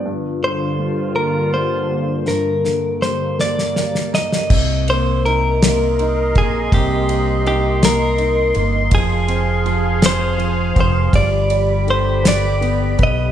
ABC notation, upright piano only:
X:1
M:6/8
L:1/8
Q:3/8=54
K:Cm
V:1 name="Upright piano"
G,, D, G, B, G, B, | G,, D, G, B, [G,d] [B,b] | C, B, E B, E B, | C, B, E B, E B, |
F, C F, C F, C | G, d D, =B =B, B |]